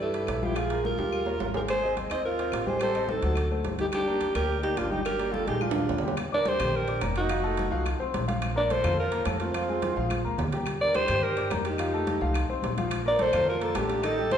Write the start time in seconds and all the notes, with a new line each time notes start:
Already playing: G2
0.00 E4 A4, high conga
0.14 G3 G4 B4, high conga, high timbale
0.27 A#1, high conga, high timbale, low timbale, claves
0.42 F3 E4 F4 G4 F5, high conga
0.56 F3 F4 G#4 F5, high conga, high timbale, claves
0.70 G#3 G#4 A#4, high conga, high timbale
0.84 F4 A#4, high conga, low timbale
0.98 D#2 G3 G4 G5, high conga, high timbale
1.13 high conga, claves
1.26 A#3 A#4 C#5, high conga, low timbale
1.40 G#1, high conga, low timbale
1.54 G#3 G4 G#4 A#4 G#5, high conga, low timbale
1.68 G#4 C5, high conga, high timbale, claves
1.83 C4 C5 D#5, high conga
1.97 high conga, high timbale, low timbale
2.10 D#2 C4 C5 D#5, high conga, high timbale, claves
2.25 F4 A#4, high conga
2.39 C4 C5 D#5, high conga, high timbale
2.52 A1, high conga, high timbale, low timbale, claves
2.66 G3 G4 G#4 C5 G5, high conga
2.80 G3 G4 A4 C5 G5, high conga, high timbale, claves
2.95 C4 C5 D#5, high conga, high timbale
3.09 D#4 A4, high conga, low timbale
3.22 D2 F#3 F#4 F#5, high conga, high timbale
3.35 high conga, high timbale, claves
3.51 A3 A4 C5, high conga
3.64 G1, high conga, high timbale, low timbale
3.79 G3 D#4 G4 G5, high conga, high timbale
3.92 D4 G4, high conga, high timbale, claves
4.07 A#3 A#4 D5, high conga
4.21 high conga, high timbale, low timbale
4.34 D2 A#3 G4 A#4 D5, high conga, high timbale, claves
4.49 high conga
4.61 A#3 D#4 G4 A#4 D5, high conga, high timbale
4.76 G1 D4 F4, high conga, high timbale, low timbale, claves
4.90 G3 D#4 G4 G5, high conga
5.04 G3 G4 A#4 G5, high timbale, claves
5.19 A#3 A#4 D5, high conga, high timbale
5.32 F4 A4, high conga, low timbale
5.46 A#1 G#3 D#4 G4 G#4 G#5, high conga, high timbale
5.61 D4 F4, high conga, high timbale, claves
5.71 D4 D5, high timbale
5.75 F5, high conga
5.80 low timbale
5.89 D#2, low conga, low timbale
5.98 low timbale
6.03 G3 G4 G5, low conga
6.08 low timbale
6.17 high conga, high timbale, claves
6.31 D4 A#4 D5 D6, high conga
6.45 G4 C5, high conga, high timbale, low timbale
6.59 A#1 G4 G5 G6, high conga, low conga, high timbale, claves
6.74 G4 A#4, high conga
6.88 D4 D5 D6, high conga, high timbale
7.01 F1 A#3 A#4 A#5, high conga, high timbale, low timbale, claves
7.16 D#4 F#4, high conga, high timbale
7.29 F3 F4 F5, high conga, high timbale, claves
7.43 A3 A4 A5, high conga
7.57 high conga, high timbale, low timbale
7.71 C2 F3 F4 F5, high conga
7.86 high conga, high timbale, claves
8.00 C2 C4 C5 C6, high conga
8.14 A#1, high conga, high timbale, low timbale
8.28 F3 F4 F5, high conga, high timbale
8.42 high conga, high timbale, claves
8.55 A#3 A#4 D5 A#5, high conga
8.70 A4 C5, high conga, high timbale, low timbale
8.84 F2 F4 F5 F6, high conga, low conga, high timbale, claves
8.98 F4 A#4, high conga
9.12 A#3 A#4 A#5, high conga, high timbale
9.25 F2 A3 A4 A5, high conga, high timbale, low timbale, claves
9.40 C4 F4, high conga, high timbale
9.54 F3 F4 F5, high conga, high timbale, claves
9.68 G#3 G#4 G#5, high conga
9.82 high conga, high timbale, low timbale
9.96 A#1 F3 F4 F5, high conga
10.10 high conga, high timbale, claves
10.24 D2 A#3 A#4 A#5
10.38 D#2, low conga, high timbale, low timbale
10.52 G3 G4 G5, low conga, high timbale
10.66 high conga, high timbale, claves
10.81 D4 A#4 D5 D6, high conga
10.94 G4 C5, high conga, high timbale, low timbale
11.08 G2 G4 G5 G6, high conga, low conga, high timbale, claves
11.23 G4 A#4, high conga
11.37 D4 D5 D6, high conga, high timbale
11.51 F2 A#3 A#4 A#5, high conga, high timbale, low timbale, claves
11.65 D#4 G4, high conga, high timbale
11.78 F3 F4 F5, high conga, high timbale, claves
11.93 A3 A4 A5, high conga
12.07 high conga, high timbale, low timbale
12.21 C2 F3 F4 F5, high conga
12.34 high conga, high timbale, claves
12.48 C2 C4 C5 C6, high conga
12.63 A#1, high conga, high timbale, low timbale
12.77 F3 F4 F5, high conga, high timbale
12.91 high conga, high timbale, claves
13.05 A#3 A#4 D5 A#5, high conga
13.19 A4 C5, high conga, high timbale, low timbale
13.33 F2 F4 F5 F6, high conga, low conga, high timbale, claves
13.47 F4 A#4, high conga
13.61 A#3 F4 A4 A#4 A#5, high conga, high timbale
13.75 A1 A3 D4 G4 A4 A5, high conga, high timbale, low timbale, claves
13.89 high conga, high timbale
14.03 D#3 D#4 A4 D#5, high timbale, claves
14.18 G3 G4 G5, high conga
14.31 A4 C5, high conga, high timbale, low timbale